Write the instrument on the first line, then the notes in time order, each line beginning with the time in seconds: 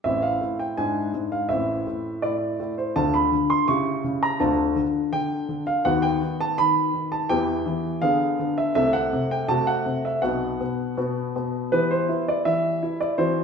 grand piano
0.04 A1 A2 C4 E4 E5
0.22 F5
0.41 A2
0.59 G5
0.77 G#2 D4 E4 G#5
1.14 G#2
1.32 F5
1.49 A1 A2 C4 E4 E5
1.87 A2
2.22 A2 D5
2.60 A2
2.78 C5
2.96 D2 D3 D4 F4 A5
3.14 B5
3.32 D3
3.50 C6
3.68 C#3 E4 G4 C#6
4.04 C#3
4.23 A#5
4.40 D2 D3 D4 F4 A5
4.76 D3
5.13 D3 G5
5.49 D3
5.67 F5
5.85 D#2 D#3 B3 F#4 F#5
6.02 G5
6.22 D#3
6.41 A5
6.58 D#3 B5
6.94 D#3
7.12 A5
7.29 E2 E3 B3 G4 G5
7.66 E3
8.02 D3 B3 G#4 F5
8.39 D3
8.58 E5
8.75 C2 C3 A3 A4 E5
8.93 F#5
9.13 C3
9.31 G5
9.48 C3 A3 F#4 A5
9.67 F#5
9.86 C3
10.05 E5
10.22 B1 B2 B3 F#4 F#5
10.61 B2
10.97 B2 B3 F#4
11.36 B2
11.72 E3 B3 G4 B4
11.91 C5
12.09 E4
12.28 D5
12.45 E3 E5
12.83 E4
13.01 D5
13.18 E3 C4 F#4 C5